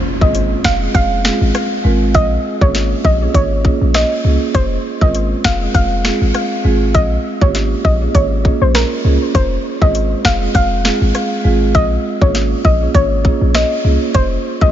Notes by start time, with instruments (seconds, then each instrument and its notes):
Already playing: impact
0.04 marimba F4 G#4
0.21 808-style bass G#1, marimba G#3 C4 F4 G#4, synth pluck D#5, kick
0.35 closed hi-hat
0.64 808-style bass F1, synth pluck F5, finger snap, kick, snare
0.81 marimba G#3 C4 F4 G#4
0.94 808-style bass F1, synth pluck F5, kick, closed hi-hat
1.24 marimba G#3 C4 F4 G#4, finger snap, snare
1.41 808-style bass G#1
1.55 cross-stick, closed hi-hat
1.84 808-style bass G#1, marimba G#3 C4 F4 A#4
2.14 808-style bass A#1, synth pluck D#5, kick, closed hi-hat
2.44 marimba F4 G#4
2.61 808-style bass G#1, marimba A#3 C#4 F4 G#4, synth pluck C#5, kick
2.75 snare, closed hi-hat
3.04 808-style bass A#1, marimba F4 G4, synth pluck D#5, kick
3.21 marimba A#3 C#4 F4 G#4
3.34 808-style bass G#1, synth pluck C#5, kick, closed hi-hat
3.64 marimba A#3 C#4 F4 G#4, kick
3.81 808-style bass A#1
3.94 synth pluck D#5, finger snap, cross-stick, snare, closed hi-hat
4.24 808-style bass C2, marimba A#3 C#4 F4 G#4
4.54 808-style bass F1, synth pluck C5, kick, closed hi-hat
4.84 marimba F4 G#4
5.01 808-style bass G#1, marimba G#3 C4 F4 A#4, synth pluck D#5, kick
5.15 closed hi-hat
5.44 808-style bass F1, synth pluck F5, finger snap, kick, snare
5.61 marimba G#3 C4 F4 G#4
5.74 808-style bass F1, synth pluck F5, kick, closed hi-hat
6.04 marimba G#3 C4 F4 G#4, finger snap, snare
6.22 808-style bass G#1
6.34 cross-stick, closed hi-hat
6.64 808-style bass G#1, marimba G#3 C4 F4 G#4
6.94 808-style bass A#1, synth pluck D#5, kick, closed hi-hat
7.24 marimba F4 G#4
7.41 808-style bass G#1, marimba A#3 C#4 F4 G4, synth pluck C#5, kick
7.55 snare, closed hi-hat
7.84 808-style bass A#1, marimba F4 G#4, synth pluck D#5, kick
8.01 marimba A#3 C#4 F4 G#4
8.15 808-style bass G#1, synth pluck C#5, kick, closed hi-hat
8.44 marimba A#3 C#4 F4 G#4, kick
8.62 808-style bass A#1, synth pluck C5
8.75 synth pluck A#4, finger snap, cross-stick, snare, closed hi-hat
9.04 808-style bass C2, marimba A#3 C#4 F4 G#4
9.35 808-style bass F1, synth pluck C5, kick, closed hi-hat
9.64 marimba F4 G#4
9.81 808-style bass G#1, marimba G#3 C4 F4 G#4, synth pluck D#5, kick
9.95 closed hi-hat
10.24 808-style bass F1, marimba F4 G#4, synth pluck F5, finger snap, kick, snare
10.41 marimba G#3 C4 F4 G#4
10.55 808-style bass F1, synth pluck F5, kick, closed hi-hat
10.84 marimba G#3 C4 F4 G#4, finger snap, snare
11.02 808-style bass G#1
11.15 cross-stick, closed hi-hat
11.44 808-style bass G#1, marimba G#3 C4 F4 G#4
11.75 808-style bass A#1, synth pluck D#5, kick, closed hi-hat
12.04 marimba F4 G#4
12.21 808-style bass G#1, marimba A#3 C#4 F4 G#4, synth pluck C#5, kick
12.35 snare, closed hi-hat
12.64 808-style bass A#1, marimba F4 G#4, synth pluck D#5, kick
12.81 marimba A#3 C#4 F4 G#4
12.95 808-style bass G#1, synth pluck C#5, kick, closed hi-hat
13.24 marimba A#3 C#4 F4 G#4, kick
13.41 808-style bass A#1
13.54 synth pluck D#5, finger snap, cross-stick, snare, closed hi-hat
13.84 808-style bass C2, marimba A#3 C#4 F4 G#4
14.14 808-style bass F1, synth pluck C5, kick, closed hi-hat
14.44 marimba F4 G#4
14.61 808-style bass G#1, marimba G#3 C4 F4 G#4, synth pluck D#5, kick